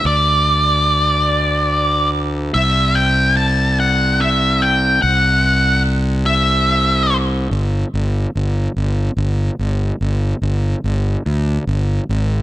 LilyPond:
<<
  \new Staff \with { instrumentName = "Lead electric guitar" } { \time 6/8 \key g \major \tempo 4. = 48 d''2~ d''8 r8 | e''8 g''8 a''8 fis''8 e''8 g''8 | fis''4 r8 e''4 r8 | r2. |
r2. | }
  \new Staff \with { instrumentName = "Fingered electric bass" } { \clef bass \time 6/8 \key g \major d,2. | c,2. | c,2. | g,,8 g,,8 g,,8 g,,8 g,,8 g,,8 |
g,,8 g,,8 g,,8 d,8 g,,8 gis,,8 | }
>>